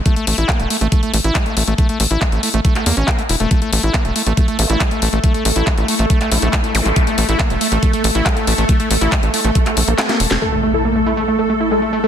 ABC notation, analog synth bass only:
X:1
M:4/4
L:1/16
Q:1/4=139
K:none
V:1 name="Analog synth bass" clef=bass
z2 A,,, A,,, z E,,, z A,,, z2 A,,, A,,, z2 A,,, A,,, | z2 A,,, A,,, z A,,, z A,,, z2 E,, A,,, z2 E,,, E,,, | z2 A,,, A,,, z E,,, z A,,, z2 A,,, A,,, z2 A,,, A,,, | z2 A,,, A,,, z A,,, z A,,, z2 _B,,, B,,, z2 A,,, A,,, |
z2 A,,, A,,, z E,,, z A,,, z2 A,,, A,,, z2 A,,, A,,, | z2 A,,, A,,, z A,,, z A,,, z2 _B,,, B,,, z2 E,,, E,,, | z16 |]